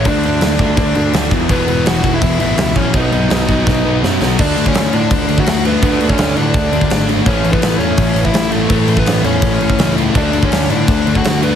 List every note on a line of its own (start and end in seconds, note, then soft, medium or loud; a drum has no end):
0.05 0.22 D2 medium
0.05 0.24 D3 loud
0.05 0.24 A3 loud
0.05 0.75 D4 medium
0.05 0.24 D4 medium
0.05 0.75 D5 medium
0.05 kick loud
0.05 crash medium
0.23 0.40 D2 medium
0.23 0.42 D3 medium
0.23 0.42 A3 medium
0.23 0.42 D4 loud
0.23 crash medium
0.41 0.58 D2 medium
0.41 0.60 D3 medium
0.41 0.60 A3 medium
0.41 0.60 D4 loud
0.41 snare loud
0.41 crash medium
0.59 0.75 D2 medium
0.59 0.78 D3 loud
0.59 0.78 A3 medium
0.59 0.79 D4 loud
0.59 kick medium
0.59 crash medium
0.77 0.93 D2 medium
0.77 0.95 D3 medium
0.77 0.96 A3 medium
0.77 1.12 D4 medium
0.77 0.96 D4 medium
0.77 1.12 D5 medium
0.77 kick loud
0.77 crash medium
0.95 1.12 D2 medium
0.95 1.13 D3 medium
0.95 1.14 A3 medium
0.95 1.14 D4 medium
0.95 crash medium
1.13 1.30 D2 medium
1.13 1.31 D3 loud
1.13 1.32 A3 medium
1.13 1.32 D4 loud
1.13 snare loud
1.13 crash medium
1.31 1.48 E1 medium
1.31 1.49 E2 loud
1.31 1.49 B2 loud
1.31 1.50 E3 loud
1.31 kick medium
1.31 crash medium
1.49 1.66 E1 loud
1.49 1.67 E2 medium
1.49 1.67 B2 loud
1.49 1.68 E3 loud
1.49 1.84 B3 medium
1.49 1.85 B4 medium
1.49 kick loud
1.49 crash medium
1.68 1.84 E1 medium
1.68 1.84 E2 medium
1.68 1.85 B2 medium
1.68 1.85 E3 loud
1.68 crash medium
1.85 2.18 E1 medium
1.85 2.03 E2 medium
1.85 2.03 B2 medium
1.85 2.03 E3 medium
1.85 2.12 F#4 medium
1.85 2.15 F#5 loud
1.85 snare loud
1.85 crash medium
2.04 2.20 E2 loud
2.04 2.21 B2 loud
2.04 2.21 E3 loud
2.04 kick medium
2.04 crash medium
2.14 2.18 E4 medium
2.14 2.19 E5 loud
2.21 2.38 E1 medium
2.21 2.38 E2 medium
2.21 2.39 B2 medium
2.21 2.40 E3 medium
2.21 2.39 E4 medium
2.21 2.39 E5 medium
2.21 kick loud
2.21 crash medium
2.40 2.56 A1 medium
2.40 2.56 E2 medium
2.40 2.56 B2 medium
2.40 2.56 E3 medium
2.40 2.74 E4 medium
2.40 2.74 E5 loud
2.40 crash medium
2.57 2.74 C#2 medium
2.57 2.73 E2 loud
2.57 2.74 B2 loud
2.57 2.75 E3 loud
2.57 snare loud
2.57 crash medium
2.75 2.92 A#1 medium
2.75 2.92 E2 medium
2.75 2.92 B2 medium
2.75 2.93 E3 loud
2.75 2.93 C#4 medium
2.75 2.95 C#5 medium
2.75 kick medium
2.75 crash medium
2.93 3.10 B1 loud
2.93 3.10 B2 loud
2.93 3.10 F#3 loud
2.93 3.11 B3 loud
2.93 3.99 D#4 medium
2.93 3.99 D#5 medium
2.93 kick loud
2.93 crash medium
3.11 3.28 B1 loud
3.11 3.28 B2 medium
3.11 3.29 F#3 loud
3.11 3.29 B3 loud
3.11 crash medium
3.29 3.46 B1 loud
3.29 3.46 B2 medium
3.29 3.46 F#3 loud
3.29 3.46 B3 medium
3.29 snare loud
3.29 crash medium
3.47 3.65 B1 medium
3.47 3.65 B2 loud
3.47 3.65 F#3 loud
3.47 3.65 B3 loud
3.47 kick medium
3.47 crash medium
3.66 3.83 B1 medium
3.66 3.84 B2 medium
3.66 3.84 F#3 medium
3.66 3.84 B3 loud
3.66 kick loud
3.66 snare medium
3.85 4.01 B1 medium
3.85 4.02 B2 medium
3.85 4.02 F#3 medium
3.85 4.03 B3 medium
4.03 4.19 F#2 medium
4.03 4.20 B2 medium
4.03 4.21 F#3 loud
4.03 4.21 B3 loud
4.03 snare medium
4.20 4.36 B1 medium
4.20 4.38 B2 medium
4.20 4.38 F#3 medium
4.20 4.38 B3 loud
4.20 snare medium
4.38 4.54 D2 loud
4.38 5.64 D3 medium
4.38 5.66 A3 medium
4.38 5.63 D4 medium
4.38 4.65 D4 medium
4.38 4.67 D5 loud
4.38 kick loud
4.38 crash loud
4.38 crash medium
4.57 4.72 D2 medium
4.57 crash medium
4.66 4.92 C#4 medium
4.66 4.95 C#5 loud
4.66 kick medium
4.74 4.90 D2 loud
4.74 snare loud
4.74 crash medium
4.93 5.08 A2 medium
4.93 5.37 D4 medium
4.93 5.41 D5 loud
4.93 crash medium
5.11 5.26 D2 medium
5.11 kick loud
5.11 crash medium
5.28 5.44 D2 medium
5.28 5.44 D3 medium
5.28 5.46 A3 medium
5.28 5.45 D4 medium
5.28 crash medium
5.38 5.64 F#4 medium
5.38 5.66 F#5 loud
5.38 kick medium
5.45 5.76 D2 medium
5.45 5.80 D3 medium
5.45 5.82 A3 medium
5.45 5.82 D4 medium
5.45 snare loud
5.45 crash medium
5.65 5.81 D3 medium
5.65 5.83 A3 medium
5.65 6.08 B3 medium
5.65 5.82 D4 medium
5.65 6.07 B4 loud
5.65 crash medium
5.82 5.97 D2 loud
5.82 7.07 D3 medium
5.82 7.08 A3 loud
5.82 7.06 D4 loud
5.82 kick loud
5.82 crash medium
6.01 6.16 D2 medium
6.01 crash medium
6.09 6.36 C#4 medium
6.09 6.37 C#5 loud
6.09 kick loud
6.18 6.33 D2 medium
6.18 snare loud
6.18 crash medium
6.36 6.52 A2 loud
6.36 7.05 D4 medium
6.36 7.05 D5 loud
6.36 crash medium
6.54 6.69 D2 loud
6.54 kick loud
6.54 crash medium
6.72 6.87 D2 medium
6.72 6.89 D3 medium
6.72 6.91 A3 medium
6.72 6.89 D4 medium
6.72 crash medium
6.81 kick medium
6.90 7.20 G#1 medium
6.90 7.25 D3 medium
6.90 7.27 A3 medium
6.90 7.27 D4 loud
6.90 snare loud
6.90 crash medium
7.07 7.25 D3 medium
7.07 7.26 A3 medium
7.07 7.25 D4 medium
7.07 crash medium
7.25 7.41 A1 loud
7.25 8.51 A2 medium
7.25 8.50 E3 medium
7.25 8.51 A3 loud
7.25 7.53 C#4 medium
7.25 7.52 C#5 loud
7.25 kick loud
7.25 crash medium
7.44 7.59 A1 loud
7.44 crash medium
7.53 7.79 B3 medium
7.53 7.78 B4 medium
7.53 kick medium
7.61 7.76 A1 medium
7.61 snare loud
7.61 crash medium
7.78 7.94 E2 loud
7.78 8.22 C#4 medium
7.78 8.26 C#5 loud
7.78 crash medium
7.97 8.13 A1 loud
7.97 kick loud
7.97 crash medium
8.14 8.30 A1 medium
8.14 8.33 E3 medium
8.14 8.36 A3 medium
8.14 crash medium
8.19 8.32 A2 medium
8.24 8.51 E4 medium
8.24 8.53 E5 loud
8.24 kick medium
8.33 8.63 A1 medium
8.33 8.69 A2 medium
8.33 8.70 E3 medium
8.33 8.71 A3 medium
8.33 snare loud
8.33 crash medium
8.51 8.68 A2 medium
8.51 8.69 E3 medium
8.51 8.72 A3 medium
8.51 8.95 A3 medium
8.51 8.99 A4 medium
8.51 crash medium
8.70 8.85 A1 loud
8.70 9.96 A2 medium
8.70 9.96 E3 medium
8.70 9.97 A3 loud
8.70 kick loud
8.70 crash medium
8.87 9.03 A1 loud
8.87 crash medium
8.97 9.24 B3 medium
8.97 9.24 B4 medium
8.97 kick loud
9.05 9.20 A1 medium
9.05 snare loud
9.05 crash medium
9.24 9.39 E2 medium
9.24 9.94 C#4 medium
9.24 9.93 C#5 loud
9.24 crash medium
9.42 9.57 A1 medium
9.42 kick loud
9.42 crash medium
9.60 9.75 A1 medium
9.60 9.77 A2 medium
9.60 9.78 E3 medium
9.60 9.80 A3 medium
9.60 crash medium
9.70 kick medium
9.78 10.09 C#2 medium
9.78 10.14 A2 medium
9.78 10.15 E3 medium
9.78 10.18 A3 medium
9.78 snare loud
9.78 crash medium
9.97 10.15 A2 medium
9.97 10.15 E3 medium
9.97 10.16 A3 medium
9.97 crash medium
10.15 10.30 D2 loud
10.15 11.41 D3 medium
10.15 11.42 A3 medium
10.15 10.42 D4 medium
10.15 11.41 D4 loud
10.15 10.45 D5 loud
10.15 kick loud
10.15 crash medium
10.33 10.48 D2 medium
10.33 crash medium
10.43 10.69 C#4 medium
10.43 10.71 C#5 medium
10.43 kick medium
10.52 10.66 D2 medium
10.52 snare loud
10.52 crash medium
10.70 10.85 A2 medium
10.70 11.12 D4 medium
10.70 11.17 D5 medium
10.70 crash medium
10.88 11.03 D2 medium
10.88 kick loud
10.88 crash medium
11.06 11.21 D2 medium
11.06 11.23 D3 medium
11.06 11.25 A3 medium
11.06 11.23 D4 medium
11.06 crash medium
11.15 11.41 F#4 medium
11.15 11.43 F#5 medium
11.15 kick medium
11.24 11.54 D2 medium
11.24 11.55 D3 medium
11.24 11.55 A3 medium
11.24 11.55 D4 medium
11.24 snare loud
11.24 crash medium
11.42 11.55 D3 medium
11.42 11.55 A3 medium
11.42 11.55 B3 medium
11.42 11.55 D4 medium
11.42 11.55 B4 loud
11.42 crash medium